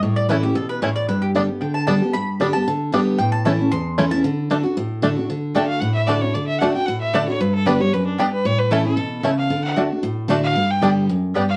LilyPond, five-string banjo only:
\new Staff \with { instrumentName = "Five-string banjo" } { \time 4/4 \key d \major \tempo 4 = 228 r4 <a cis' e'>8 r4. <a cis' e'>8 r8 | r4 <g b d'>8 r4. <g b d'>8 r8 | r4 <g b d'>8 r4. <g b d'>8 r8 | r4 <a cis' e'>8 r4. <a cis' e'>8 r8 |
r4 <a d'>8 r4. <a d'>8 r8 | r4 <a d'>8 r4. <a d'>8 r8 | r4 <a d'>8 r4. <a d'>8 r8 | r4 <g b d'>8 r4. <g b d'>8 r8 |
r4 <a cis' e'>8 r4. <a cis' e'>8 r8 | r4 <a d'>8 r4. <a d'>8 r8 | r4 <g b d'>8 r4. <g b d'>8 r8 | }